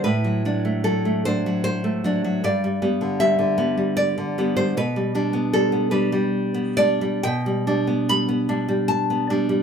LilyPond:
\new Staff \with { instrumentName = "Nylon-string guitar" } { \time 3/4 \key g \major \tempo 4 = 76 << { b'4 a'8 c''8 c''4 | d''4 e''4 d''8. c''16 | b'4 a'8 b'8 r8 d''8 | \key g \mixolydian g''4 b''4 a''4 | } \\ { a,16 fis16 <fis d'>16 a16 fis16 a16 <fis d'>16 fis8 a16 <fis d'>16 fis16 | g,16 g16 <g b>16 d16 g16 d16 <g b>16 g8 d16 <g b>16 g16 | b,16 g16 <g d'>16 b16 g16 b16 <g d'>16 g8 b16 <g d'>16 g16 | b,16 g16 <g d'>16 b16 g16 b16 <g d'>16 g8 b16 <g d'>16 g16 | } >> }